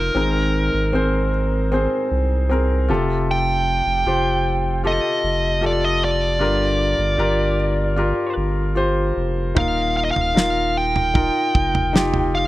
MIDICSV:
0, 0, Header, 1, 5, 480
1, 0, Start_track
1, 0, Key_signature, -2, "minor"
1, 0, Tempo, 781250
1, 93, Time_signature, 4, 2, 24, 8
1, 4413, Tempo, 791557
1, 7622, End_track
2, 0, Start_track
2, 0, Title_t, "Lead electric guitar"
2, 0, Program_c, 0, 29
2, 0, Note_on_c, 0, 70, 58
2, 1281, Note_off_c, 0, 70, 0
2, 2034, Note_on_c, 0, 79, 81
2, 2960, Note_off_c, 0, 79, 0
2, 2993, Note_on_c, 0, 75, 70
2, 3477, Note_off_c, 0, 75, 0
2, 3479, Note_on_c, 0, 74, 71
2, 3591, Note_off_c, 0, 74, 0
2, 3591, Note_on_c, 0, 75, 76
2, 3706, Note_off_c, 0, 75, 0
2, 3714, Note_on_c, 0, 74, 71
2, 5118, Note_off_c, 0, 74, 0
2, 5866, Note_on_c, 0, 77, 74
2, 6095, Note_off_c, 0, 77, 0
2, 6103, Note_on_c, 0, 77, 86
2, 6145, Note_off_c, 0, 77, 0
2, 6149, Note_on_c, 0, 75, 73
2, 6187, Note_off_c, 0, 75, 0
2, 6189, Note_on_c, 0, 77, 90
2, 6591, Note_on_c, 0, 79, 74
2, 6595, Note_off_c, 0, 77, 0
2, 7545, Note_on_c, 0, 77, 79
2, 7569, Note_off_c, 0, 79, 0
2, 7622, Note_off_c, 0, 77, 0
2, 7622, End_track
3, 0, Start_track
3, 0, Title_t, "Grand piano"
3, 0, Program_c, 1, 0
3, 0, Control_c, 1, 64, 127
3, 0, Note_on_c, 1, 63, 52
3, 0, Note_on_c, 1, 65, 51
3, 0, Note_on_c, 1, 70, 57
3, 66, Note_off_c, 1, 63, 0
3, 69, Note_off_c, 1, 65, 0
3, 72, Note_off_c, 1, 70, 0
3, 90, Note_on_c, 1, 60, 66
3, 94, Note_on_c, 1, 44, 46
3, 95, Note_on_c, 1, 51, 45
3, 95, Note_on_c, 1, 68, 56
3, 100, Control_c, 1, 64, 0
3, 102, Note_on_c, 1, 70, 72
3, 216, Control_c, 1, 64, 127
3, 551, Note_off_c, 1, 60, 0
3, 553, Note_off_c, 1, 68, 0
3, 557, Note_off_c, 1, 70, 0
3, 572, Note_on_c, 1, 60, 72
3, 580, Note_on_c, 1, 68, 63
3, 585, Note_on_c, 1, 72, 78
3, 794, Note_off_c, 1, 44, 0
3, 794, Note_off_c, 1, 51, 0
3, 1033, Note_off_c, 1, 60, 0
3, 1037, Note_off_c, 1, 68, 0
3, 1039, Note_off_c, 1, 72, 0
3, 1056, Note_on_c, 1, 60, 74
3, 1062, Note_on_c, 1, 68, 70
3, 1068, Note_on_c, 1, 72, 76
3, 1513, Note_off_c, 1, 60, 0
3, 1516, Note_off_c, 1, 68, 0
3, 1519, Note_off_c, 1, 72, 0
3, 1533, Note_on_c, 1, 60, 70
3, 1537, Note_on_c, 1, 68, 63
3, 1544, Note_on_c, 1, 70, 70
3, 1773, Note_on_c, 1, 65, 73
3, 1775, Note_off_c, 1, 60, 0
3, 1777, Note_off_c, 1, 68, 0
3, 1778, Note_on_c, 1, 48, 57
3, 1779, Note_on_c, 1, 67, 68
3, 1780, Note_off_c, 1, 70, 0
3, 1784, Control_c, 1, 64, 0
3, 1785, Note_on_c, 1, 69, 77
3, 1886, Control_c, 1, 64, 127
3, 2458, Note_off_c, 1, 65, 0
3, 2461, Note_off_c, 1, 67, 0
3, 2463, Note_off_c, 1, 69, 0
3, 2471, Note_off_c, 1, 48, 0
3, 2496, Note_on_c, 1, 65, 62
3, 2500, Note_on_c, 1, 67, 62
3, 2506, Note_on_c, 1, 72, 72
3, 2952, Note_off_c, 1, 65, 0
3, 2954, Note_off_c, 1, 67, 0
3, 2957, Note_off_c, 1, 72, 0
3, 2971, Note_on_c, 1, 65, 66
3, 2976, Note_on_c, 1, 67, 61
3, 2983, Note_on_c, 1, 69, 72
3, 3430, Note_off_c, 1, 65, 0
3, 3432, Note_off_c, 1, 67, 0
3, 3435, Note_off_c, 1, 69, 0
3, 3448, Note_on_c, 1, 65, 65
3, 3454, Note_on_c, 1, 67, 54
3, 3460, Note_on_c, 1, 69, 73
3, 3907, Note_off_c, 1, 65, 0
3, 3910, Note_off_c, 1, 67, 0
3, 3912, Note_off_c, 1, 69, 0
3, 3928, Note_on_c, 1, 65, 75
3, 3935, Note_on_c, 1, 43, 52
3, 3935, Note_on_c, 1, 50, 50
3, 3935, Note_on_c, 1, 67, 67
3, 3939, Note_on_c, 1, 70, 82
3, 3942, Control_c, 1, 64, 0
3, 4042, Control_c, 1, 64, 127
3, 4388, Note_off_c, 1, 65, 0
3, 4391, Note_off_c, 1, 67, 0
3, 4393, Note_off_c, 1, 70, 0
3, 4408, Note_on_c, 1, 65, 68
3, 4415, Note_on_c, 1, 67, 68
3, 4421, Note_on_c, 1, 70, 86
3, 4629, Note_off_c, 1, 43, 0
3, 4630, Note_off_c, 1, 50, 0
3, 4865, Note_off_c, 1, 65, 0
3, 4869, Note_off_c, 1, 67, 0
3, 4872, Note_off_c, 1, 70, 0
3, 4887, Note_on_c, 1, 65, 71
3, 4893, Note_on_c, 1, 67, 63
3, 4900, Note_on_c, 1, 70, 75
3, 5347, Note_off_c, 1, 65, 0
3, 5351, Note_off_c, 1, 67, 0
3, 5354, Note_off_c, 1, 70, 0
3, 5365, Note_on_c, 1, 65, 67
3, 5370, Note_on_c, 1, 67, 54
3, 5376, Note_on_c, 1, 72, 79
3, 5829, Note_off_c, 1, 65, 0
3, 5831, Note_off_c, 1, 67, 0
3, 5834, Note_off_c, 1, 72, 0
3, 5849, Note_on_c, 1, 63, 69
3, 5854, Note_on_c, 1, 65, 56
3, 5855, Note_on_c, 1, 46, 44
3, 5859, Note_on_c, 1, 70, 75
3, 5865, Control_c, 1, 64, 0
3, 5971, Control_c, 1, 64, 127
3, 6311, Note_off_c, 1, 63, 0
3, 6314, Note_off_c, 1, 65, 0
3, 6317, Note_off_c, 1, 70, 0
3, 6331, Note_on_c, 1, 63, 60
3, 6337, Note_on_c, 1, 65, 56
3, 6341, Note_on_c, 1, 70, 70
3, 6555, Note_off_c, 1, 46, 0
3, 6792, Note_off_c, 1, 63, 0
3, 6795, Note_off_c, 1, 65, 0
3, 6797, Note_off_c, 1, 70, 0
3, 6812, Note_on_c, 1, 63, 60
3, 6817, Note_on_c, 1, 65, 55
3, 6821, Note_on_c, 1, 70, 68
3, 7270, Note_off_c, 1, 63, 0
3, 7273, Note_off_c, 1, 65, 0
3, 7275, Note_off_c, 1, 70, 0
3, 7293, Note_on_c, 1, 63, 77
3, 7298, Note_on_c, 1, 65, 65
3, 7305, Note_on_c, 1, 67, 77
3, 7622, Note_off_c, 1, 63, 0
3, 7622, Note_off_c, 1, 65, 0
3, 7622, Note_off_c, 1, 67, 0
3, 7622, End_track
4, 0, Start_track
4, 0, Title_t, "Sub bass"
4, 0, Program_c, 2, 38
4, 0, Note_on_c, 2, 29, 83
4, 66, Note_off_c, 2, 29, 0
4, 92, Note_on_c, 2, 32, 90
4, 430, Note_off_c, 2, 32, 0
4, 454, Note_on_c, 2, 32, 87
4, 567, Note_off_c, 2, 32, 0
4, 575, Note_on_c, 2, 32, 95
4, 1154, Note_off_c, 2, 32, 0
4, 1298, Note_on_c, 2, 36, 80
4, 1775, Note_on_c, 2, 29, 86
4, 1784, Note_off_c, 2, 36, 0
4, 2350, Note_off_c, 2, 29, 0
4, 2376, Note_on_c, 2, 29, 90
4, 2487, Note_off_c, 2, 29, 0
4, 2495, Note_on_c, 2, 29, 87
4, 3072, Note_off_c, 2, 29, 0
4, 3218, Note_on_c, 2, 29, 88
4, 3932, Note_on_c, 2, 31, 87
4, 3941, Note_off_c, 2, 29, 0
4, 4269, Note_off_c, 2, 31, 0
4, 4293, Note_on_c, 2, 31, 81
4, 4406, Note_off_c, 2, 31, 0
4, 4413, Note_on_c, 2, 31, 90
4, 4988, Note_off_c, 2, 31, 0
4, 5132, Note_on_c, 2, 31, 86
4, 5591, Note_off_c, 2, 31, 0
4, 5617, Note_on_c, 2, 29, 82
4, 5841, Note_off_c, 2, 29, 0
4, 5856, Note_on_c, 2, 27, 104
4, 6195, Note_off_c, 2, 27, 0
4, 6220, Note_on_c, 2, 27, 90
4, 6332, Note_off_c, 2, 27, 0
4, 6339, Note_on_c, 2, 27, 88
4, 6916, Note_off_c, 2, 27, 0
4, 7059, Note_on_c, 2, 29, 83
4, 7622, Note_off_c, 2, 29, 0
4, 7622, End_track
5, 0, Start_track
5, 0, Title_t, "Drums"
5, 5858, Note_on_c, 9, 36, 72
5, 5859, Note_on_c, 9, 43, 73
5, 5918, Note_off_c, 9, 36, 0
5, 5919, Note_off_c, 9, 43, 0
5, 6220, Note_on_c, 9, 43, 52
5, 6281, Note_off_c, 9, 43, 0
5, 6348, Note_on_c, 9, 38, 91
5, 6408, Note_off_c, 9, 38, 0
5, 6702, Note_on_c, 9, 43, 52
5, 6763, Note_off_c, 9, 43, 0
5, 6820, Note_on_c, 9, 36, 76
5, 6880, Note_off_c, 9, 36, 0
5, 7061, Note_on_c, 9, 36, 72
5, 7122, Note_off_c, 9, 36, 0
5, 7182, Note_on_c, 9, 43, 55
5, 7243, Note_off_c, 9, 43, 0
5, 7308, Note_on_c, 9, 38, 94
5, 7368, Note_off_c, 9, 38, 0
5, 7417, Note_on_c, 9, 43, 55
5, 7477, Note_off_c, 9, 43, 0
5, 7622, End_track
0, 0, End_of_file